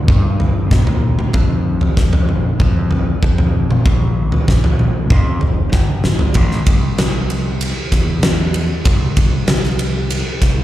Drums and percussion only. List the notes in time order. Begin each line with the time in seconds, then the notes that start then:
0.08 kick, floor tom
0.40 floor tom
0.71 kick, snare, mid tom
0.87 floor tom, mid tom
1.19 mid tom
1.33 kick, floor tom
1.81 floor tom
1.97 kick, snare
2.13 floor tom
2.29 mid tom
2.60 kick, floor tom
2.91 floor tom
3.23 kick
3.38 floor tom, mid tom
3.71 mid tom
3.86 kick, floor tom
4.32 floor tom
4.48 kick, snare
4.64 floor tom
4.79 mid tom
5.10 kick, floor tom
5.41 floor tom
5.72 kick, snare
6.04 snare
6.19 floor tom
6.34 kick, ride
6.51 snare
6.66 kick, ride
6.98 snare, ride
7.30 ride
7.61 ride
7.92 kick, snare, ride
8.23 snare, ride
8.54 ride
8.85 kick, ride
9.17 kick, ride
9.48 snare, ride
9.64 snare
9.79 ride
10.10 ride
10.42 kick, snare, ride